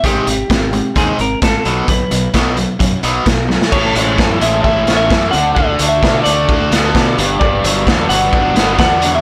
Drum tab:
CC |----------------|----------------|x---------------|----------------|
HH |x-x-x-x-x-x-x-x-|x-x-x-x-x-x-x---|--x---x---x---x-|--x---x---x---x-|
SD |----o-------o---|----o-------o-oo|----o-----o-o---|----o-----o-o---|
BD |o---o---o---o---|o---o---o---o---|o---o---o---o---|o---o---o---o---|

CC |----------------|
HH |--x---x---x---x-|
SD |----o-----o-o---|
BD |o---o---o---o---|